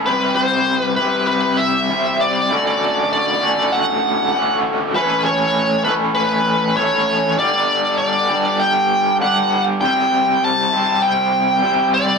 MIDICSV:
0, 0, Header, 1, 3, 480
1, 0, Start_track
1, 0, Tempo, 609137
1, 45, Time_signature, 4, 2, 24, 8
1, 9601, End_track
2, 0, Start_track
2, 0, Title_t, "Lead electric guitar"
2, 0, Program_c, 0, 29
2, 46, Note_on_c, 0, 71, 79
2, 276, Note_off_c, 0, 71, 0
2, 279, Note_on_c, 0, 72, 75
2, 634, Note_off_c, 0, 72, 0
2, 634, Note_on_c, 0, 71, 75
2, 755, Note_off_c, 0, 71, 0
2, 758, Note_on_c, 0, 71, 76
2, 993, Note_off_c, 0, 71, 0
2, 1002, Note_on_c, 0, 71, 76
2, 1238, Note_on_c, 0, 76, 87
2, 1252, Note_off_c, 0, 71, 0
2, 1738, Note_off_c, 0, 76, 0
2, 1738, Note_on_c, 0, 74, 90
2, 2455, Note_off_c, 0, 74, 0
2, 2464, Note_on_c, 0, 74, 89
2, 2934, Note_on_c, 0, 78, 88
2, 2952, Note_off_c, 0, 74, 0
2, 3622, Note_off_c, 0, 78, 0
2, 3904, Note_on_c, 0, 71, 77
2, 4134, Note_off_c, 0, 71, 0
2, 4137, Note_on_c, 0, 73, 78
2, 4602, Note_off_c, 0, 73, 0
2, 4606, Note_on_c, 0, 71, 73
2, 4671, Note_off_c, 0, 71, 0
2, 4844, Note_on_c, 0, 71, 78
2, 5329, Note_off_c, 0, 71, 0
2, 5332, Note_on_c, 0, 73, 82
2, 5817, Note_off_c, 0, 73, 0
2, 5820, Note_on_c, 0, 74, 81
2, 6282, Note_off_c, 0, 74, 0
2, 6292, Note_on_c, 0, 74, 87
2, 6773, Note_on_c, 0, 79, 96
2, 6787, Note_off_c, 0, 74, 0
2, 7221, Note_off_c, 0, 79, 0
2, 7263, Note_on_c, 0, 78, 87
2, 7593, Note_off_c, 0, 78, 0
2, 7729, Note_on_c, 0, 79, 89
2, 8224, Note_off_c, 0, 79, 0
2, 8229, Note_on_c, 0, 81, 103
2, 8686, Note_on_c, 0, 79, 94
2, 8713, Note_off_c, 0, 81, 0
2, 9407, Note_on_c, 0, 74, 88
2, 9427, Note_off_c, 0, 79, 0
2, 9601, Note_off_c, 0, 74, 0
2, 9601, End_track
3, 0, Start_track
3, 0, Title_t, "Overdriven electric guitar"
3, 0, Program_c, 1, 29
3, 49, Note_on_c, 1, 48, 82
3, 55, Note_on_c, 1, 55, 88
3, 58, Note_on_c, 1, 60, 86
3, 66, Note_on_c, 1, 64, 82
3, 71, Note_on_c, 1, 72, 89
3, 72, Note_on_c, 1, 67, 88
3, 753, Note_off_c, 1, 48, 0
3, 756, Note_off_c, 1, 55, 0
3, 757, Note_off_c, 1, 60, 0
3, 760, Note_off_c, 1, 72, 0
3, 761, Note_off_c, 1, 64, 0
3, 764, Note_off_c, 1, 67, 0
3, 769, Note_on_c, 1, 72, 84
3, 774, Note_on_c, 1, 67, 76
3, 778, Note_on_c, 1, 64, 73
3, 785, Note_on_c, 1, 60, 60
3, 789, Note_on_c, 1, 55, 64
3, 792, Note_on_c, 1, 48, 60
3, 1474, Note_off_c, 1, 72, 0
3, 1476, Note_off_c, 1, 67, 0
3, 1478, Note_off_c, 1, 64, 0
3, 1482, Note_off_c, 1, 48, 0
3, 1482, Note_off_c, 1, 60, 0
3, 1484, Note_off_c, 1, 55, 0
3, 1492, Note_on_c, 1, 48, 71
3, 1498, Note_on_c, 1, 55, 76
3, 1505, Note_on_c, 1, 60, 68
3, 1507, Note_on_c, 1, 64, 76
3, 1516, Note_on_c, 1, 67, 76
3, 1519, Note_on_c, 1, 72, 80
3, 1956, Note_off_c, 1, 48, 0
3, 1959, Note_off_c, 1, 55, 0
3, 1963, Note_off_c, 1, 60, 0
3, 1963, Note_off_c, 1, 64, 0
3, 1968, Note_off_c, 1, 67, 0
3, 1968, Note_on_c, 1, 38, 80
3, 1969, Note_off_c, 1, 72, 0
3, 1975, Note_on_c, 1, 45, 81
3, 1978, Note_on_c, 1, 50, 92
3, 1984, Note_on_c, 1, 57, 90
3, 1989, Note_on_c, 1, 61, 81
3, 1993, Note_on_c, 1, 66, 91
3, 2675, Note_off_c, 1, 38, 0
3, 2677, Note_off_c, 1, 66, 0
3, 2678, Note_off_c, 1, 45, 0
3, 2680, Note_off_c, 1, 50, 0
3, 2686, Note_on_c, 1, 66, 80
3, 2691, Note_off_c, 1, 61, 0
3, 2694, Note_on_c, 1, 61, 73
3, 2697, Note_off_c, 1, 57, 0
3, 2700, Note_on_c, 1, 57, 68
3, 2705, Note_on_c, 1, 50, 71
3, 2706, Note_on_c, 1, 45, 67
3, 2714, Note_on_c, 1, 38, 63
3, 3395, Note_off_c, 1, 66, 0
3, 3399, Note_off_c, 1, 61, 0
3, 3402, Note_off_c, 1, 38, 0
3, 3404, Note_off_c, 1, 50, 0
3, 3405, Note_off_c, 1, 45, 0
3, 3411, Note_on_c, 1, 38, 65
3, 3417, Note_on_c, 1, 45, 69
3, 3423, Note_off_c, 1, 57, 0
3, 3423, Note_on_c, 1, 50, 70
3, 3426, Note_on_c, 1, 57, 76
3, 3430, Note_on_c, 1, 61, 76
3, 3436, Note_on_c, 1, 66, 76
3, 3876, Note_off_c, 1, 45, 0
3, 3878, Note_off_c, 1, 38, 0
3, 3884, Note_off_c, 1, 50, 0
3, 3886, Note_on_c, 1, 45, 82
3, 3887, Note_off_c, 1, 61, 0
3, 3890, Note_off_c, 1, 66, 0
3, 3892, Note_on_c, 1, 52, 83
3, 3898, Note_off_c, 1, 57, 0
3, 3898, Note_on_c, 1, 57, 83
3, 3903, Note_on_c, 1, 61, 85
3, 3909, Note_on_c, 1, 64, 86
3, 3910, Note_on_c, 1, 69, 91
3, 4596, Note_off_c, 1, 45, 0
3, 4598, Note_off_c, 1, 52, 0
3, 4599, Note_off_c, 1, 69, 0
3, 4602, Note_on_c, 1, 69, 76
3, 4604, Note_off_c, 1, 61, 0
3, 4604, Note_off_c, 1, 64, 0
3, 4614, Note_on_c, 1, 64, 75
3, 4616, Note_on_c, 1, 61, 68
3, 4618, Note_off_c, 1, 57, 0
3, 4622, Note_on_c, 1, 57, 68
3, 4625, Note_on_c, 1, 52, 65
3, 4630, Note_on_c, 1, 45, 61
3, 5314, Note_off_c, 1, 69, 0
3, 5317, Note_off_c, 1, 45, 0
3, 5320, Note_off_c, 1, 64, 0
3, 5321, Note_off_c, 1, 61, 0
3, 5324, Note_off_c, 1, 57, 0
3, 5326, Note_off_c, 1, 52, 0
3, 5327, Note_on_c, 1, 45, 68
3, 5334, Note_on_c, 1, 52, 67
3, 5338, Note_on_c, 1, 57, 72
3, 5343, Note_on_c, 1, 61, 77
3, 5348, Note_on_c, 1, 64, 76
3, 5353, Note_on_c, 1, 69, 74
3, 5796, Note_off_c, 1, 45, 0
3, 5799, Note_off_c, 1, 52, 0
3, 5802, Note_off_c, 1, 57, 0
3, 5804, Note_off_c, 1, 61, 0
3, 5807, Note_off_c, 1, 64, 0
3, 5809, Note_off_c, 1, 69, 0
3, 5811, Note_on_c, 1, 43, 78
3, 5820, Note_on_c, 1, 50, 87
3, 5826, Note_on_c, 1, 55, 89
3, 5834, Note_on_c, 1, 62, 92
3, 5837, Note_on_c, 1, 67, 86
3, 6518, Note_off_c, 1, 43, 0
3, 6522, Note_off_c, 1, 50, 0
3, 6529, Note_off_c, 1, 62, 0
3, 6530, Note_off_c, 1, 67, 0
3, 6534, Note_on_c, 1, 67, 72
3, 6541, Note_on_c, 1, 62, 71
3, 6545, Note_off_c, 1, 55, 0
3, 6548, Note_on_c, 1, 55, 70
3, 6552, Note_on_c, 1, 50, 75
3, 6560, Note_on_c, 1, 43, 60
3, 7238, Note_off_c, 1, 67, 0
3, 7243, Note_off_c, 1, 43, 0
3, 7243, Note_off_c, 1, 62, 0
3, 7246, Note_off_c, 1, 55, 0
3, 7248, Note_off_c, 1, 50, 0
3, 7253, Note_on_c, 1, 43, 75
3, 7260, Note_on_c, 1, 50, 70
3, 7268, Note_on_c, 1, 55, 77
3, 7271, Note_on_c, 1, 62, 79
3, 7278, Note_on_c, 1, 67, 77
3, 7718, Note_off_c, 1, 43, 0
3, 7721, Note_off_c, 1, 50, 0
3, 7725, Note_off_c, 1, 55, 0
3, 7727, Note_off_c, 1, 62, 0
3, 7728, Note_on_c, 1, 48, 82
3, 7730, Note_off_c, 1, 67, 0
3, 7734, Note_on_c, 1, 55, 85
3, 7740, Note_on_c, 1, 60, 85
3, 7743, Note_on_c, 1, 64, 88
3, 7749, Note_on_c, 1, 67, 92
3, 7754, Note_on_c, 1, 72, 94
3, 8434, Note_off_c, 1, 48, 0
3, 8437, Note_off_c, 1, 55, 0
3, 8440, Note_off_c, 1, 60, 0
3, 8442, Note_off_c, 1, 64, 0
3, 8443, Note_off_c, 1, 72, 0
3, 8444, Note_off_c, 1, 67, 0
3, 8452, Note_on_c, 1, 72, 80
3, 8458, Note_on_c, 1, 67, 73
3, 8464, Note_on_c, 1, 64, 68
3, 8470, Note_on_c, 1, 60, 62
3, 8474, Note_on_c, 1, 55, 67
3, 8480, Note_on_c, 1, 48, 57
3, 9152, Note_off_c, 1, 48, 0
3, 9155, Note_off_c, 1, 55, 0
3, 9155, Note_off_c, 1, 72, 0
3, 9158, Note_off_c, 1, 67, 0
3, 9161, Note_off_c, 1, 64, 0
3, 9162, Note_on_c, 1, 48, 72
3, 9163, Note_off_c, 1, 60, 0
3, 9164, Note_on_c, 1, 55, 78
3, 9171, Note_on_c, 1, 60, 74
3, 9179, Note_on_c, 1, 64, 74
3, 9182, Note_on_c, 1, 67, 78
3, 9188, Note_on_c, 1, 72, 76
3, 9601, Note_off_c, 1, 48, 0
3, 9601, Note_off_c, 1, 55, 0
3, 9601, Note_off_c, 1, 60, 0
3, 9601, Note_off_c, 1, 64, 0
3, 9601, Note_off_c, 1, 67, 0
3, 9601, Note_off_c, 1, 72, 0
3, 9601, End_track
0, 0, End_of_file